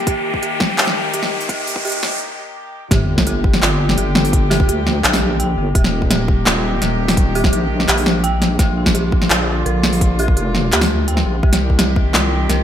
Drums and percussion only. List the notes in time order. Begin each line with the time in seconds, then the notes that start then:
0.07 kick, closed hi-hat
0.34 kick
0.43 closed hi-hat
0.60 kick, snare
0.78 clap, open hi-hat
0.81 open hi-hat
0.87 snare
1.14 closed hi-hat
1.23 snare
1.40 open hi-hat
1.49 kick, closed hi-hat
1.67 open hi-hat
1.76 kick
1.85 closed hi-hat
1.87 closed hi-hat
1.89 closed hi-hat
1.92 closed hi-hat
2.03 snare
2.91 kick, snare, closed hi-hat
3.18 kick, snare
3.27 closed hi-hat
3.44 kick
3.54 snare
3.62 clap, open hi-hat
3.89 snare
3.98 closed hi-hat
4.15 snare
4.25 open hi-hat
4.33 kick, closed hi-hat
4.51 snare, open hi-hat
4.60 kick
4.69 closed hi-hat
4.87 snare
5.04 clap, closed hi-hat
5.13 snare, open hi-hat
5.40 closed hi-hat
5.75 kick, closed hi-hat
5.84 snare
6.02 kick
6.11 snare, closed hi-hat
6.28 kick
6.46 clap, snare, open hi-hat
6.82 snare, closed hi-hat
7.08 snare, open hi-hat
7.17 kick, closed hi-hat
7.35 open hi-hat
7.44 kick, snare
7.53 closed hi-hat
7.80 snare
7.88 clap, closed hi-hat
7.98 open hi-hat
8.06 snare
8.24 closed hi-hat
8.42 snare, closed hi-hat
8.59 kick, snare, closed hi-hat
8.86 kick, snare
8.95 closed hi-hat
9.12 kick
9.22 snare
9.30 clap, open hi-hat
9.66 closed hi-hat
9.83 snare
9.93 open hi-hat
10.01 kick, closed hi-hat
10.19 open hi-hat
10.28 kick
10.37 closed hi-hat
10.55 snare
10.72 clap, closed hi-hat
10.81 snare, open hi-hat
11.08 closed hi-hat
11.17 snare
11.43 kick
11.53 snare, closed hi-hat
11.70 kick
11.79 snare, closed hi-hat
11.96 kick
12.14 clap, snare, open hi-hat
12.49 snare, closed hi-hat